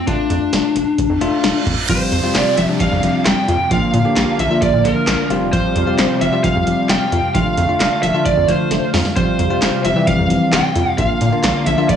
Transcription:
0.07 analog synth bass F1, tine electric piano A3 D4 F4, lead electric guitar D4, kick, closed hi-hat
0.30 analog synth bass F2, closed hi-hat
0.53 analog synth bass F1, snare, closed hi-hat
0.76 analog synth bass F1, closed hi-hat
0.98 analog synth bass F1, kick, closed hi-hat, reverse cymbal
1.10 analog synth bass F2
1.21 analog synth bass F1, tine electric piano A3 D4 F4, closed hi-hat
1.44 analog synth bass F1, snare, closed hi-hat
1.66 analog synth bass F2, kick, closed hi-hat
1.89 analog synth bass F1, analog synth pad C3 F3 G3 F5, synth pluck F3, tine electric piano G3 C4 F4, lead electric guitar C5, kick, closed hi-hat, crash, downlifter
2.12 analog synth bass F2, closed hi-hat
2.23 tine electric piano G3 C4 F4
2.35 analog synth bass F1, lead electric guitar D5, snare, clap, closed hi-hat
2.57 analog synth bass F1, synth pluck F3, lead electric guitar E5, closed hi-hat
2.69 tine electric piano G3 C4 D4
2.80 analog synth bass F1, synth pluck F3, lead electric guitar F5, kick, closed hi-hat
2.92 analog synth bass F2
3.03 analog synth bass F1, synth pluck F3, closed hi-hat
3.26 analog synth bass F1, synth pluck G3, lead electric guitar G5, snare, clap, closed hi-hat
3.48 analog synth bass F2, synth pluck F4, closed hi-hat
3.71 analog synth bass A#1, analog synth pad D3 A#3, synth pluck F3, tine electric piano A#3 D4 F4, lead electric guitar F5, kick, closed hi-hat
3.94 analog synth bass A#2, closed hi-hat
4.05 tine electric piano A#3 D4 G4
4.16 analog synth bass A#1, snare, clap, closed hi-hat
4.39 analog synth bass A#1, synth pluck F3, lead electric guitar E5, closed hi-hat
4.51 tine electric piano A#3 D4 F4
4.62 analog synth bass A#1, synth pluck F3, lead electric guitar D5, kick, closed hi-hat
4.73 analog synth bass A#2
4.85 analog synth bass A#1, synth pluck F3, lead electric guitar A#4, closed hi-hat
5.07 analog synth bass A#1, synth pluck A#3, snare, clap, closed hi-hat
5.30 analog synth bass F1, analog synth pad C3 G3, tine electric piano G3 C4 F4, synth pluck F4, closed hi-hat
5.53 synth pluck F3, lead electric guitar C5, kick, closed hi-hat
5.76 analog synth bass F2, closed hi-hat
5.87 tine electric piano G3 C4 F4
5.98 analog synth bass F1, snare, clap, closed hi-hat
6.21 analog synth bass F1, synth pluck F3, lead electric guitar E5, closed hi-hat
6.33 tine electric piano G3 C4 F4
6.44 analog synth bass F1, synth pluck F3, lead electric guitar F5, kick, closed hi-hat
6.55 analog synth bass F2
6.67 analog synth bass F1, synth pluck F3, closed hi-hat
6.89 analog synth bass F1, synth pluck G3, lead electric guitar G5, snare, clap, closed hi-hat
7.12 analog synth bass F2, synth pluck F4, closed hi-hat
7.34 analog synth bass F1, analog synth pad D3 A3, synth pluck F3, tine electric piano A3 D4 F4, lead electric guitar F5, kick, closed hi-hat
7.57 analog synth bass F2, closed hi-hat
7.69 tine electric piano A3 D4 F4
7.80 analog synth bass F1, snare, clap, closed hi-hat
8.02 analog synth bass F1, synth pluck F3, lead electric guitar E5, closed hi-hat
8.14 tine electric piano A3 D4 F4
8.25 analog synth bass F1, synth pluck F3, lead electric guitar D5, kick, closed hi-hat
8.37 analog synth bass F2
8.48 analog synth bass F1, synth pluck F3, lead electric guitar C5, closed hi-hat
8.71 analog synth bass F1, synth pluck A3, snare, closed hi-hat
8.94 analog synth bass F2, synth pluck F4, snare, open hi-hat
9.05 snare
9.16 analog synth bass F1, analog synth pad C3 G3, synth pluck F3, tine electric piano G3 C4 F4, lead electric guitar C5, kick, closed hi-hat
9.39 analog synth bass F2, closed hi-hat
9.50 tine electric piano G3 C4 F4
9.62 analog synth bass F1, snare, clap, closed hi-hat
9.85 analog synth bass F1, synth pluck F3, lead electric guitar E5, closed hi-hat
9.96 tine electric piano E3 G3 C4
10.07 analog synth bass F1, synth pluck F3, lead electric guitar F5, kick, closed hi-hat
10.19 analog synth bass F2
10.30 analog synth bass F1, synth pluck F3, closed hi-hat
10.53 analog synth bass F1, synth pluck G3, lead electric guitar G5, snare, clap, closed hi-hat
10.76 analog synth bass F2, synth pluck F4, closed hi-hat
10.98 analog synth bass A#1, analog synth pad D3 A#3, synth pluck F3, tine electric piano A#3 D4 F4, lead electric guitar F5, kick, closed hi-hat
11.21 analog synth bass A#2, closed hi-hat
11.32 tine electric piano A#3 D4 F4
11.43 analog synth bass A#1, snare, clap, closed hi-hat
11.66 analog synth bass A#1, synth pluck F3, lead electric guitar E5, closed hi-hat
11.78 tine electric piano A#3 D4 F4
11.89 analog synth bass A#1, synth pluck F3, lead electric guitar D5, kick, closed hi-hat

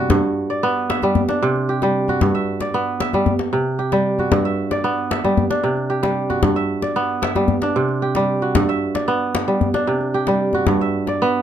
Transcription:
Already playing: kora C3 G3 D4 F#4
0.10 kora G2, djembe slap, djembe bass
0.50 kora D5
0.63 kora B3, djembe slap
0.90 kora E5, djembe slap
1.02 kora G3, djembe tone
1.15 djembe bass
1.29 kora D4, djembe slap
1.42 kora C3
1.56 djembe slap
1.69 kora G4
1.82 kora G3, djembe slap
2.08 kora F#4, djembe tone
2.21 kora G2, djembe slap, djembe bass
2.35 kora E5
2.61 kora D5, djembe slap
2.74 kora B3, djembe slap
3.00 kora E5, djembe slap
3.13 kora G3, djembe slap, djembe tone
3.26 djembe bass
3.39 djembe slap
3.53 kora C3
3.79 kora G4
3.92 kora G3, djembe slap
4.19 kora F#4, djembe tone
4.32 kora G2, djembe slap, djembe bass
4.45 kora E5
4.71 kora D5, djembe slap
4.84 kora B3, djembe slap
5.11 kora E5, djembe slap
5.24 kora G3, djembe tone
5.37 djembe bass
5.50 kora D4, djembe slap
5.64 kora C3
5.77 djembe slap
5.90 kora G4
6.03 kora G3, djembe slap
6.30 kora F#4, djembe tone
6.43 kora G2, djembe slap, djembe bass
6.56 kora E5
6.82 kora D5, djembe slap
6.96 kora B3, djembe slap
7.22 kora E5, djembe slap
7.36 kora G3, djembe tone
7.48 djembe bass
7.62 kora D4, djembe slap
7.76 kora C3
7.89 djembe slap
8.02 kora G4
8.15 kora G3, djembe slap
8.42 kora F#4
8.55 kora G2, djembe slap, djembe bass
8.69 kora E5
8.95 kora D5, djembe slap
9.08 kora B3, djembe slap
9.35 djembe slap
9.48 kora G3
9.61 djembe bass
9.74 kora D4, djembe slap
9.87 kora C3
10.01 djembe slap
10.14 kora G4
10.27 kora G3, djembe slap
10.53 kora F#4, djembe tone
10.67 kora G2, djembe slap, djembe bass
10.80 kora E5, djembe slap
11.07 kora D5, djembe slap
11.21 kora B3, djembe slap

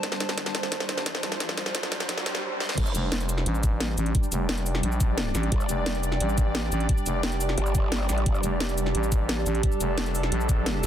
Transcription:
Already playing: synth drone G3 D4 C5, ambient pad G4 D5 A5, riser
0.03 kick, snare, closed hi-hat
0.12 snare
0.20 snare, closed hi-hat
0.29 snare
0.38 kick, snare, closed hi-hat
0.46 snare, closed hi-hat
0.55 snare, closed hi-hat
0.63 snare
0.72 kick, snare, closed hi-hat
0.80 snare
0.89 snare, closed hi-hat
0.98 snare
1.06 kick, snare, closed hi-hat
1.15 snare
1.23 snare, closed hi-hat
1.32 snare, closed hi-hat
1.40 kick, snare, closed hi-hat
1.49 snare
1.58 snare, closed hi-hat
1.66 snare
1.75 kick, snare, closed hi-hat
1.83 snare, closed hi-hat
1.92 snare, closed hi-hat
2.00 snare, closed hi-hat
2.09 kick, snare, closed hi-hat
2.18 snare
2.26 snare, closed hi-hat
2.35 snare
2.60 snare
2.69 snare
2.78 wobble bass G1, synth drone G3 D4 D5, ambient pad G4, kick, closed hi-hat, crash
2.84 ambient pad D5, cabasa
2.95 fm bass F1, closed hi-hat, cabasa
3.12 snare, closed hi-hat
3.20 closed hi-hat, cabasa
3.29 closed hi-hat, cabasa
3.36 ambient pad G5, snare
3.46 fm bass A1, closed hi-hat
3.55 cabasa
3.63 kick, closed hi-hat, cabasa
3.80 snare, closed hi-hat
3.98 fm bass A1, closed hi-hat, cabasa
4.06 closed hi-hat
4.15 kick, closed hi-hat
4.23 cabasa
4.32 fm bass F1, closed hi-hat, cabasa
4.49 snare, closed hi-hat
4.58 closed hi-hat, cabasa
4.66 open hi-hat, cabasa
4.75 snare
4.83 fm bass A#1, closed hi-hat
4.92 cabasa
5.00 kick, closed hi-hat, cabasa
5.18 snare, closed hi-hat
5.35 fm bass A1, snare, closed hi-hat, cabasa
5.43 closed hi-hat
5.52 wobble bass G1, kick, closed hi-hat
5.60 cabasa
5.69 fm bass F1, closed hi-hat, cabasa
5.86 snare, closed hi-hat
5.95 closed hi-hat, cabasa
6.03 closed hi-hat, cabasa
6.12 snare
6.20 fm bass A1, closed hi-hat
6.29 cabasa
6.38 kick, closed hi-hat, cabasa
6.55 snare, closed hi-hat
6.72 fm bass A1, closed hi-hat, cabasa
6.80 closed hi-hat
6.89 kick, closed hi-hat
6.98 cabasa
7.06 fm bass F1, closed hi-hat, cabasa
7.23 snare, closed hi-hat
7.32 closed hi-hat, cabasa
7.40 open hi-hat, cabasa
7.49 snare
7.58 wobble bass G1, closed hi-hat
7.66 cabasa
7.75 kick, closed hi-hat, cabasa
7.92 snare, closed hi-hat
8.09 wobble bass A1, snare, closed hi-hat, cabasa
8.18 closed hi-hat
8.26 wobble bass G1, synth drone A4, kick, closed hi-hat
8.35 cabasa
8.43 fm bass F1, closed hi-hat, cabasa
8.60 snare, closed hi-hat
8.69 closed hi-hat, cabasa
8.78 closed hi-hat, cabasa
8.85 ambient pad A5, snare
8.95 fm bass A1, closed hi-hat
9.03 cabasa
9.12 kick, closed hi-hat, cabasa
9.29 snare, closed hi-hat
9.46 fm bass A1, closed hi-hat, cabasa
9.55 closed hi-hat
9.63 kick, closed hi-hat
9.72 cabasa
9.80 fm bass F1, closed hi-hat, cabasa
9.98 snare, closed hi-hat
10.06 closed hi-hat, cabasa
10.15 open hi-hat, cabasa
10.23 snare
10.32 fm bass A#1, closed hi-hat
10.41 cabasa
10.49 kick, closed hi-hat, cabasa
10.66 snare, closed hi-hat
10.83 fm bass A1, snare, closed hi-hat, cabasa

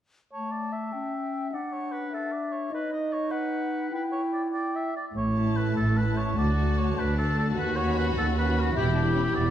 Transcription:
0.33 clarinet A3, oboe C#5, flute A5
0.51 oboe D5
0.72 oboe E5
0.93 clarinet C#4, flute G5
1.52 clarinet D4, oboe D5, flute F#5
1.73 oboe C#5
1.92 oboe B4
2.12 oboe A4, flute E5
2.32 oboe D5
2.52 oboe C#5
2.71 clarinet D#4, oboe B4, flute D#5
2.92 oboe D#5
3.13 oboe C#5
3.31 oboe B4, flute F#5
3.91 clarinet E4, oboe B4, flute G5
4.12 oboe C#5
4.33 oboe D5
4.52 oboe D5, flute G5
4.75 oboe E5
4.96 oboe D5
5.14 double bass section A1, cello section A2, oboe C#5
5.35 viola section A3 E4, violin section A5
5.57 oboe B4
5.75 double bass section A1, cello section A2, oboe A4
5.96 viola section A3 E4, oboe B4, violin section A5
6.17 oboe C#5
6.35 cello section D2, double bass section D2, viola section A3 F#4, violin section F#4 A5, oboe D5
6.56 viola section A3 F#4, violin section A5
6.78 oboe C#5
6.96 cello section D2, double bass section D2, violin section D4, oboe B4
7.16 viola section A3 F#4, oboe A4, violin section A5
7.39 oboe A4
7.54 double bass section D#2, cello section D#2, violin section F#4
7.58 oboe B4
7.76 viola section C#4 F#4, oboe C#5, violin section B5
7.98 oboe B4
8.16 cello section D#2, double bass section D#2, oboe A4
8.37 viola section C#4 F#4, oboe B4, violin section B5
8.60 oboe F#4
8.75 double bass section E1, cello section E2, violin section E4 B5, viola section E4 G4, oboe G4
8.95 violin section D4 B5, viola section E4 G4
9.14 violin section C#4
9.34 double bass section E1, cello section E2, violin section B3, oboe D5

